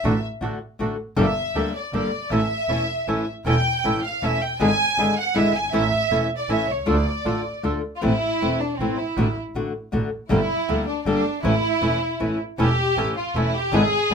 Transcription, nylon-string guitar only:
0.04 0.13 D3 medium
0.04 0.13 A3 medium
0.04 0.13 D4 medium
0.04 0.13 F#4 medium
0.41 0.58 D3 medium
0.41 0.58 A3 medium
0.41 0.59 D4 medium
0.41 0.59 F#4 medium
0.79 0.96 D3 medium
0.79 0.96 A3 medium
0.79 0.96 D4 medium
0.79 0.97 F#4 medium
1.16 1.26 D3 medium
1.16 1.26 G3 medium
1.16 1.26 A#3 medium
1.16 1.26 D4 medium
1.16 1.26 A4 medium
1.55 1.72 D3 medium
1.55 1.72 G3 medium
1.55 1.72 A#3 medium
1.55 1.72 D4 medium
1.55 1.72 A4 medium
1.93 2.10 D3 medium
1.93 2.10 G3 medium
1.93 2.10 A#3 medium
1.93 2.10 D4 medium
1.93 2.10 A4 medium
2.32 2.40 E3 medium
2.32 2.40 A3 medium
2.32 2.40 C#4 medium
2.32 2.40 E4 medium
2.69 2.85 E3 medium
2.69 2.86 A3 medium
2.69 2.86 C#4 medium
2.69 2.86 E4 medium
3.07 3.24 E3 medium
3.07 3.25 A3 medium
3.07 3.25 C#4 medium
3.07 3.25 E4 medium
3.46 3.55 E3 medium
3.46 3.55 A3 medium
3.46 3.55 C#4 medium
3.46 3.55 E4 medium
3.84 4.01 E3 medium
3.84 4.01 A3 medium
3.84 4.01 C#4 medium
3.84 4.02 E4 medium
4.22 4.39 E3 medium
4.22 4.39 A3 medium
4.22 4.40 C#4 medium
4.22 4.40 E4 medium
4.60 4.69 D3 medium
4.60 4.69 G#3 medium
4.60 4.69 B3 medium
4.60 4.69 E4 loud
4.60 4.70 G#4 medium
4.97 5.14 D3 medium
4.97 5.15 G#3 medium
4.97 5.15 B3 medium
4.97 5.15 E4 medium
4.97 5.15 G#4 medium
5.34 5.52 D3 medium
5.34 5.52 G#3 medium
5.34 5.52 B3 medium
5.34 5.52 E4 medium
5.34 5.52 G#4 medium
5.73 5.82 E3 medium
5.73 5.82 A3 medium
5.73 5.82 C#4 medium
5.73 5.82 E4 loud
6.11 6.28 E3 medium
6.11 6.28 A3 medium
6.11 6.28 C#4 medium
6.11 6.28 E4 medium
6.49 6.66 E3 medium
6.49 6.66 A3 medium
6.49 6.66 C#4 medium
6.49 6.66 E4 medium
6.86 6.95 D3 medium
6.86 6.95 A3 medium
6.86 6.96 D4 medium
6.86 6.96 F4 medium
7.25 7.42 D3 medium
7.25 7.42 A3 medium
7.25 7.42 D4 medium
7.25 7.42 F4 medium
7.63 7.81 D3 medium
7.63 7.81 A3 medium
7.63 7.81 D4 medium
7.63 7.81 F4 medium
8.02 8.11 E3 medium
8.02 8.12 A3 medium
8.02 8.12 C4 medium
8.02 8.12 E4 medium
8.42 8.59 E3 medium
8.42 8.59 A3 medium
8.42 8.59 C4 medium
8.42 8.59 E4 medium
8.80 8.97 E3 medium
8.80 8.97 A3 medium
8.80 8.97 C4 medium
8.80 8.97 E4 medium
9.18 9.27 D3 medium
9.18 9.27 A3 medium
9.18 9.27 D4 medium
9.18 9.27 F#4 medium
9.55 9.72 D3 medium
9.55 9.72 A3 medium
9.55 9.72 D4 medium
9.55 9.72 F#4 medium
9.92 10.09 D3 medium
9.92 10.09 A3 medium
9.92 10.09 D4 medium
9.92 10.10 F#4 medium
10.29 10.39 D3 medium
10.29 10.39 G3 medium
10.29 10.39 A#3 medium
10.29 10.39 D4 medium
10.29 10.39 A4 medium
10.68 10.85 D3 medium
10.68 10.85 G3 medium
10.68 10.85 A#3 medium
10.68 10.85 D4 medium
10.68 10.86 A4 medium
11.06 11.23 D3 medium
11.06 11.23 G3 medium
11.06 11.23 A#3 medium
11.06 11.23 D4 medium
11.06 11.23 A4 medium
11.44 11.53 E3 medium
11.44 11.53 A3 medium
11.44 11.53 C#4 medium
11.44 11.53 E4 medium
11.81 11.98 E3 medium
11.81 11.99 A3 medium
11.81 11.99 C#4 medium
11.81 11.99 E4 medium
12.20 12.37 E3 medium
12.20 12.37 A3 medium
12.20 12.37 C#4 medium
12.20 12.37 E4 medium
12.58 12.68 E3 medium
12.58 12.68 A3 medium
12.58 12.68 C#4 medium
12.58 12.68 E4 medium
12.97 13.14 E3 medium
12.97 13.14 A3 medium
12.97 13.15 C#4 medium
12.97 13.15 E4 medium
13.36 13.52 E3 medium
13.36 13.53 A3 medium
13.36 13.53 C#4 medium
13.36 13.53 E4 medium
13.73 13.82 D3 medium
13.73 13.82 G#3 medium
13.73 13.82 B3 medium
13.73 13.82 E4 medium
13.73 13.83 G#4 medium
14.11 14.14 D3 medium

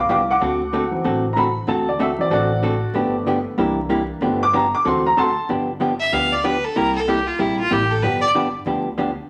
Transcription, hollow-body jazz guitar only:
0.09 0.20 D3 medium
0.09 0.20 F3 medium
0.09 0.20 B3 medium
0.09 0.20 D4 medium
0.09 0.21 G4 medium
0.41 0.61 D3 medium
0.41 0.61 A3 medium
0.41 0.61 C4 medium
0.41 0.62 F#4 medium
0.41 0.62 A4 medium
0.73 0.84 D3 medium
0.73 0.84 A3 medium
0.73 0.84 C4 medium
0.73 0.84 F#4 medium
0.73 0.84 A4 medium
1.05 1.25 D3 medium
1.05 1.25 A3 medium
1.05 1.25 C4 medium
1.05 1.25 F#4 medium
1.05 1.25 A4 medium
1.36 1.47 D3 medium
1.36 1.47 A3 medium
1.36 1.47 C4 medium
1.36 1.47 F#4 medium
1.36 1.48 A4 medium
1.68 1.88 D3 medium
1.68 1.88 A3 medium
1.68 1.88 C4 medium
1.68 1.89 F#4 medium
1.68 1.88 A4 medium
1.99 2.10 D3 medium
1.99 2.10 A3 medium
1.99 2.11 C4 medium
1.99 2.11 F#4 medium
1.99 2.11 A4 medium
2.31 2.51 D3 medium
2.31 2.51 A3 medium
2.31 2.51 C4 medium
2.31 2.52 F#4 medium
2.31 2.52 A4 medium
2.63 2.74 D3 medium
2.63 2.74 A3 medium
2.63 2.74 C4 medium
2.63 2.74 F#4 medium
2.63 2.74 A4 medium
2.95 3.15 D3 medium
2.95 3.15 F3 medium
2.95 3.15 B3 medium
2.95 3.15 D4 medium
2.95 3.15 G4 medium
3.26 3.37 D3 medium
3.26 3.38 F3 medium
3.26 3.38 B3 medium
3.26 3.38 D4 medium
3.26 3.38 G4 medium
3.58 3.78 C3 medium
3.58 3.78 G3 medium
3.58 3.79 A#3 medium
3.58 3.79 E4 medium
3.58 3.79 G4 medium
3.89 4.01 C3 medium
3.89 4.01 G3 medium
3.89 4.01 A#3 medium
3.89 4.01 E4 medium
3.89 4.01 G4 medium
4.22 4.42 D3 medium
4.22 4.42 F3 medium
4.22 4.42 B3 medium
4.22 4.42 D4 medium
4.22 4.42 G4 medium
4.53 4.64 D3 medium
4.53 4.64 F3 medium
4.53 4.65 B3 medium
4.53 4.65 D4 medium
4.53 4.65 G4 medium
4.85 5.06 D3 medium
4.85 5.06 A3 medium
4.85 5.06 C4 medium
4.85 5.06 F#4 medium
4.85 5.06 A4 medium
5.17 5.28 D3 medium
5.17 5.28 A3 medium
5.17 5.28 C4 medium
5.17 5.28 F#4 medium
5.17 5.28 A4 medium
5.49 5.69 D3 medium
5.49 5.69 F3 medium
5.49 5.70 B3 medium
5.49 5.70 D4 medium
5.49 5.70 G4 medium
5.80 5.91 D3 medium
5.80 5.92 F3 medium
5.80 5.92 B3 medium
5.80 5.92 D4 medium
5.80 5.92 G4 medium
6.12 6.33 D3 medium
6.12 6.33 F3 medium
6.12 6.33 B3 medium
6.12 6.33 D4 medium
6.12 6.33 G4 medium
6.44 6.55 D3 medium
6.44 6.55 F3 medium
6.44 6.55 B3 medium
6.44 6.55 D4 medium
6.44 6.55 G4 medium
6.76 6.96 C3 medium
6.76 6.96 G3 medium
6.76 6.97 A#3 medium
6.76 6.97 E4 medium
6.76 6.97 G4 medium
7.07 7.19 C3 medium
7.07 7.19 G3 medium
7.07 7.19 A#3 medium
7.07 7.19 E4 medium
7.07 7.19 G4 medium
7.39 7.60 C3 medium
7.39 7.60 G3 medium
7.39 7.60 A#3 medium
7.39 7.60 E4 medium
7.39 7.60 G4 medium
7.70 7.82 C3 medium
7.70 7.82 G3 medium
7.70 7.82 A#3 medium
7.70 7.82 E4 medium
7.70 7.82 G4 medium
8.03 8.24 D3 medium
8.03 8.24 F3 medium
8.03 8.24 B3 medium
8.03 8.24 D4 medium
8.03 8.24 G4 medium
8.35 8.46 D3 medium
8.35 8.46 F3 medium
8.35 8.46 B3 medium
8.35 8.46 D4 medium
8.35 8.46 G4 medium
8.66 8.87 D3 medium
8.66 8.87 F3 medium
8.66 8.87 B3 medium
8.66 8.88 D4 medium
8.66 8.88 G4 medium
8.98 9.09 D3 medium
8.98 9.09 F3 medium
8.98 9.10 B3 medium
8.98 9.10 D4 medium
8.98 9.10 G4 medium

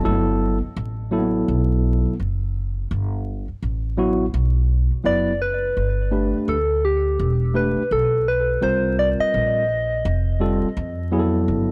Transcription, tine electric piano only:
0.04 0.57 F#3 medium
0.04 0.12 A3 medium
0.04 0.57 E4 medium
0.04 0.57 A4 medium
0.11 0.60 B3 medium
1.11 2.13 F#3 medium
1.11 1.19 A#3 medium
1.11 2.13 E4 medium
1.11 2.14 A4 medium
1.18 2.16 B3 medium
3.97 4.24 F#3 medium
3.97 4.25 B3 medium
3.97 4.25 E4 medium
3.97 4.25 F#4 medium
5.04 5.31 F#3 medium
5.04 5.31 B3 medium
5.04 5.32 E4 medium
5.04 5.32 B4 medium
6.11 6.56 A3 medium
6.11 6.56 D4 medium
6.11 6.56 G4 medium
6.11 6.56 B4 medium
7.54 7.81 A3 medium
7.54 7.81 D4 medium
7.54 7.82 G4 medium
7.54 7.82 B4 medium
8.61 9.63 G3 medium
8.61 9.63 C4 medium
8.61 9.63 F4 medium
8.61 9.64 A#4 medium
10.40 10.67 G3 medium
10.40 10.67 C4 medium
10.40 10.68 F4 medium
10.40 10.68 A4 medium
11.12 11.71 F#3 medium
11.12 11.71 B3 medium
11.12 11.71 E4 medium
11.12 11.20 G#4 medium
11.19 11.71 A4 medium

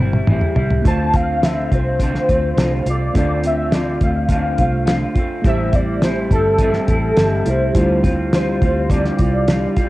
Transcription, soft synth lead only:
0.87 1.17 A5 loud
1.15 1.46 F5 loud
1.44 1.75 E5 loud
1.74 2.88 C5 loud
2.89 3.15 D5 medium
3.18 3.43 D5 medium
3.46 3.75 E5 medium
3.73 4.05 D5 loud
4.03 4.30 F5 medium
4.31 5.13 F5 medium
5.46 5.76 E5 loud
5.75 6.05 D5 loud
6.04 6.32 C5 loud
6.32 7.50 A4 medium
7.48 8.05 C5 medium
8.34 8.92 C5 loud
8.90 9.77 D5 loud

